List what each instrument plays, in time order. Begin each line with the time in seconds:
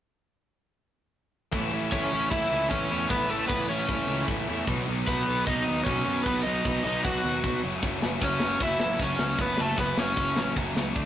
1.52 picked electric bass A1, distorted electric guitar A2 E3 A3 C#4 E4, kick, open hi-hat
1.71 picked electric bass A1, distorted electric guitar A2 E3 A3 C#4 E4
1.90 picked electric bass A1, distorted electric guitar A2 E3 A3 C#4 E4, overdriven electric guitar C#4 C#5, kick, open hi-hat
2.11 picked electric bass A1, distorted electric guitar A2 E3 A3 C#4 E4
2.30 picked electric bass A1, distorted electric guitar A2 E3 A3 C#4 E4, overdriven electric guitar E4 E5, kick, open hi-hat
2.51 picked electric bass C#2, distorted electric guitar A2 E3 A3 C#4 E4
2.69 picked electric bass A1, distorted electric guitar A2 E3 A3 C#4 E4, overdriven electric guitar C#4 C#5, kick, open hi-hat
2.90 picked electric bass E2, distorted electric guitar A2 E3 A3 C#4 E4
3.09 picked electric bass A1, distorted electric guitar A2 E3 A3 C#4 E4, overdriven electric guitar B3 B4, kick, open hi-hat
3.28 picked electric bass A1, distorted electric guitar A2 E3 A3 C#4 E4, overdriven electric guitar A3 A4
3.47 picked electric bass A1, distorted electric guitar A2 E3 A3 C#4 E4, overdriven electric guitar B3 B4, kick, open hi-hat
3.69 picked electric bass A1, distorted electric guitar A2 E3 A3 C#4 E4, overdriven electric guitar C#4 C#5
3.88 picked electric bass A1, distorted electric guitar A2 E3 A3 C#4 E4, kick, open hi-hat
4.08 picked electric bass C#2, distorted electric guitar A2 E3 A3 C#4 E4
4.27 picked electric bass A1, distorted electric guitar A2 E3 A3 C#4 E4, kick, open hi-hat
4.47 picked electric bass E2, distorted electric guitar A2 E3 A3 C#4 E4
4.67 picked electric bass B1, distorted electric guitar B2 F#3 B3 D#4, kick, open hi-hat
4.88 picked electric bass B1, distorted electric guitar B2 F#3 B3 D#4
5.07 picked electric bass B1, distorted electric guitar B2 F#3 B3 D#4, overdriven electric guitar B3 B4, kick, open hi-hat
5.28 picked electric bass B1, distorted electric guitar B2 F#3 B3 D#4
5.47 picked electric bass B1, distorted electric guitar B2 F#3 B3 D#4, overdriven electric guitar D#4 D#5, kick, open hi-hat
5.67 picked electric bass D#2, distorted electric guitar B2 F#3 B3 D#4
5.84 picked electric bass B1, distorted electric guitar B2 F#3 B3, overdriven electric guitar C#4 C#5, kick, open hi-hat
5.88 distorted electric guitar D#4
6.05 picked electric bass F#2, distorted electric guitar B2 F#3 B3 D#4
6.24 picked electric bass B1, distorted electric guitar B2 F#3 B3, overdriven electric guitar B3 B4, kick, open hi-hat
6.28 distorted electric guitar D#4
6.43 picked electric bass B1, distorted electric guitar B2, overdriven electric guitar D#4 D#5
6.48 distorted electric guitar F#3 B3 D#4
6.65 picked electric bass B1, distorted electric guitar B2 F#3 B3 D#4, kick, open hi-hat
6.85 picked electric bass B1, distorted electric guitar B2 F#3 B3 D#4, overdriven electric guitar D#4 D#5
7.04 picked electric bass B1, distorted electric guitar B2 F#3 B3 D#4, overdriven electric guitar F#4 F#5, kick, open hi-hat
7.24 picked electric bass D#2, distorted electric guitar B2 F#3 B3 D#4
7.44 picked electric bass B1, distorted electric guitar B2 F#3 B3 D#4, kick, open hi-hat
7.63 picked electric bass F#1, distorted electric guitar F#2 C#3 F#3 A3 C#4
7.83 picked electric bass F#1, distorted electric guitar F#2 C#3 F#3 A3 C#4, kick, open hi-hat
8.02 picked electric bass F#1, distorted electric guitar F#2 C#3 F#3 A3 C#4, snare
8.21 picked electric bass F#1, distorted electric guitar F#2 C#3 F#3 A3 C#4, overdriven electric guitar C#4 C#5, kick, open hi-hat
8.40 picked electric bass F#1, distorted electric guitar F#2 C#3 F#3 A3 C#4, snare
8.60 picked electric bass F#1, distorted electric guitar F#2 C#3 F#3 A3 C#4, overdriven electric guitar E4, kick, open hi-hat
8.64 overdriven electric guitar E5
8.80 picked electric bass A1, distorted electric guitar F#2 C#3 F#3 A3 C#4, snare
8.99 picked electric bass F#1, distorted electric guitar F#2 C#3 F#3 A3 C#4, overdriven electric guitar C#4, kick, open hi-hat
9.03 overdriven electric guitar C#5
9.19 picked electric bass C#2, distorted electric guitar F#2 C#3 F#3 A3 C#4, snare
9.38 picked electric bass F#1, distorted electric guitar F#2 C#3 F#3 A3 C#4, overdriven electric guitar B3 B4, kick, open hi-hat
9.58 picked electric bass F#1, distorted electric guitar F#2 C#3 F#3 A3 C#4, overdriven electric guitar A3 A4, snare
9.77 picked electric bass F#1, distorted electric guitar F#2 C#3 F#3 A3 C#4, overdriven electric guitar B3 B4, kick, open hi-hat
9.97 picked electric bass F#1, distorted electric guitar F#2 C#3 F#3 A3 C#4, overdriven electric guitar C#4 C#5, snare
10.16 picked electric bass F#1, distorted electric guitar F#2 C#3 F#3 A3 C#4, kick, open hi-hat
10.36 picked electric bass A1, distorted electric guitar F#2 C#3 F#3 A3 C#4, snare
10.56 picked electric bass F#1, distorted electric guitar F#2 C#3 F#3 A3 C#4, kick, open hi-hat
10.75 picked electric bass C#2, distorted electric guitar F#2 C#3 F#3 A3 C#4, snare
10.95 picked electric bass D2, distorted electric guitar D3 F#3 A3 D4, kick, open hi-hat